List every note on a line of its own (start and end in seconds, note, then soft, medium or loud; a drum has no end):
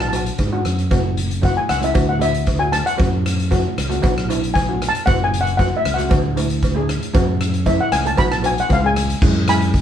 0.00 0.30 B1 medium
0.00 0.07 A5 medium
0.00 cross-stick medium
0.09 0.36 B3 medium
0.09 0.14 A5 medium
0.13 0.37 D4 medium
0.13 0.37 F#4 medium
0.13 0.21 A5 medium
0.13 closed hi-hat medium
0.13 cowbell medium
0.26 closed hi-hat medium
0.38 0.63 G#2 medium
0.38 kick medium
0.38 closed hi-hat medium
0.38 cowbell medium
0.52 0.76 B3 medium
0.52 0.76 D4 medium
0.52 0.76 F#4 medium
0.65 0.89 F#2 medium
0.65 cross-stick medium
0.65 closed hi-hat medium
0.78 closed hi-hat medium
0.91 1.55 F#1 medium
0.91 1.23 A3 medium
0.91 1.23 C#4 medium
0.91 1.23 F#4 medium
0.91 kick loud
0.91 closed hi-hat medium
0.91 cowbell medium
1.17 closed hi-hat medium
1.31 closed hi-hat medium
1.41 1.66 A3 medium
1.41 1.66 C#4 medium
1.41 1.67 F#4 medium
1.41 1.58 F#5 medium
1.41 kick medium
1.41 closed hi-hat medium
1.41 cowbell medium
1.57 1.70 G#5 medium
1.69 1.91 C#2 medium
1.69 1.82 F#5 medium
1.69 cross-stick medium
1.69 closed hi-hat medium
1.81 1.93 A3 medium
1.81 1.95 C#4 medium
1.81 1.95 E4 medium
1.81 2.10 E5 medium
1.81 closed hi-hat medium
1.94 2.81 D2 medium
1.94 2.16 A3 medium
1.94 2.16 D4 medium
1.94 2.16 F#4 medium
1.94 kick loud
1.94 closed hi-hat medium
1.94 cowbell medium
2.09 2.22 F#5 medium
2.19 2.44 A3 medium
2.19 2.44 D4 medium
2.19 2.44 F#4 medium
2.19 2.58 E5 medium
2.19 closed hi-hat medium
2.19 cowbell medium
2.34 closed hi-hat medium
2.46 kick medium
2.46 closed hi-hat medium
2.46 cowbell medium
2.58 2.83 A3 medium
2.58 2.83 D4 medium
2.58 2.83 F#4 medium
2.58 2.65 G#5 medium
2.72 2.87 A5 loud
2.72 cross-stick medium
2.72 closed hi-hat medium
2.86 3.35 F#5 medium
2.86 closed hi-hat medium
2.97 3.63 F#2 loud
2.97 3.30 A3 medium
2.97 3.30 C#4 medium
2.97 3.30 F#4 medium
2.97 kick loud
2.97 closed hi-hat medium
2.97 cowbell medium
3.26 cross-stick medium
3.26 closed hi-hat medium
3.40 closed hi-hat medium
3.51 3.74 A3 loud
3.51 3.75 C#4 medium
3.51 3.75 F#4 loud
3.51 kick medium
3.51 closed hi-hat medium
3.51 cowbell medium
3.78 3.99 C#2 medium
3.78 cross-stick medium
3.78 closed hi-hat medium
3.89 4.02 A3 medium
3.89 4.03 C#4 medium
3.89 4.01 F#4 medium
3.89 closed hi-hat medium
4.02 4.89 B1 medium
4.02 4.24 B3 medium
4.02 4.24 D4 medium
4.02 4.24 F#4 loud
4.02 kick loud
4.02 closed hi-hat medium
4.02 cowbell medium
4.18 cross-stick medium
4.29 4.53 B3 medium
4.29 4.53 D4 medium
4.29 4.53 E4 medium
4.29 closed hi-hat medium
4.29 cowbell medium
4.44 closed hi-hat medium
4.54 4.90 G#5 loud
4.54 kick medium
4.54 closed hi-hat medium
4.54 cowbell medium
4.68 4.92 B3 medium
4.68 4.92 D4 medium
4.68 4.92 F#4 medium
4.82 cross-stick medium
4.82 closed hi-hat medium
4.89 5.07 A5 loud
4.95 closed hi-hat medium
5.06 5.71 F#1 loud
5.06 5.38 A3 medium
5.06 5.38 C#4 medium
5.06 5.38 F#4 medium
5.06 5.24 F#5 loud
5.06 kick loud
5.06 closed hi-hat medium
5.06 cowbell medium
5.24 5.42 G#5 loud
5.34 closed hi-hat medium
5.41 5.56 F#5 medium
5.47 closed hi-hat medium
5.57 5.82 A3 medium
5.57 5.82 C#4 medium
5.57 5.83 F#4 medium
5.57 5.74 F#5 medium
5.57 kick medium
5.57 closed hi-hat medium
5.57 cowbell medium
5.77 5.84 E5 medium
5.85 6.07 C#2 medium
5.85 cross-stick medium
5.85 closed hi-hat medium
5.94 6.08 A3 medium
5.94 6.10 C#4 medium
5.94 6.09 F#4 medium
5.94 7.20 F#5 medium
5.98 closed hi-hat medium
6.09 6.96 D2 medium
6.09 6.31 A3 medium
6.09 6.31 D4 medium
6.09 6.31 F#4 medium
6.09 kick loud
6.09 closed hi-hat medium
6.09 cowbell medium
6.36 6.60 A3 medium
6.36 6.60 D4 medium
6.36 6.60 E4 medium
6.36 closed hi-hat medium
6.36 cowbell medium
6.50 closed hi-hat medium
6.62 kick medium
6.62 closed hi-hat medium
6.62 cowbell medium
6.75 6.99 A3 medium
6.75 6.99 D4 medium
6.75 6.99 G#4 loud
6.89 cross-stick medium
6.89 closed hi-hat medium
7.03 closed hi-hat medium
7.13 7.79 F#2 loud
7.13 7.45 A3 medium
7.13 7.45 C#4 medium
7.13 7.46 F#4 loud
7.13 kick loud
7.13 closed hi-hat medium
7.13 cowbell loud
7.41 cross-stick medium
7.41 closed hi-hat medium
7.54 closed hi-hat medium
7.66 7.90 A3 medium
7.66 7.90 C#4 medium
7.66 7.90 E4 medium
7.66 7.80 E5 medium
7.66 kick medium
7.66 closed hi-hat medium
7.66 cowbell medium
7.81 7.93 F#5 medium
7.92 8.14 C#2 medium
7.92 8.05 G#5 loud
7.92 cross-stick medium
7.92 closed hi-hat medium
8.04 8.18 A3 medium
8.04 8.18 C#4 medium
8.04 8.18 A4 medium
8.04 8.19 A5 medium
8.04 closed hi-hat medium
8.17 8.61 B1 medium
8.17 8.39 B3 medium
8.17 8.39 D4 medium
8.17 8.39 F#4 medium
8.17 8.25 B5 loud
8.17 kick loud
8.17 closed hi-hat medium
8.17 cowbell loud
8.32 8.45 A5 medium
8.32 cross-stick medium
8.43 8.67 B3 medium
8.43 8.67 D4 medium
8.43 8.67 F#4 medium
8.43 8.58 G#5 medium
8.43 closed hi-hat medium
8.43 cowbell medium
8.58 8.72 F#5 medium
8.58 closed hi-hat medium
8.69 9.13 C#2 loud
8.69 8.80 G#3 medium
8.69 8.81 C#4 medium
8.69 8.81 F4 medium
8.69 8.85 F5 loud
8.69 kick medium
8.69 closed hi-hat medium
8.69 cowbell medium
8.83 9.07 G#3 medium
8.83 9.07 C#4 medium
8.83 9.07 G#4 medium
8.83 9.21 G#5 medium
8.96 cross-stick medium
8.96 closed hi-hat medium
9.10 closed hi-hat medium
9.22 9.81 F#2 loud
9.22 9.38 G#3 medium
9.22 9.38 B3 medium
9.22 9.38 E4 medium
9.22 kick loud
9.22 crash loud
9.48 9.79 G#3 medium
9.48 9.79 B3 medium
9.48 9.80 E4 medium
9.48 9.81 G#5 medium
9.48 9.81 B5 loud
9.48 cross-stick loud
9.48 closed hi-hat medium
9.62 closed hi-hat medium
9.74 kick medium
9.74 closed hi-hat medium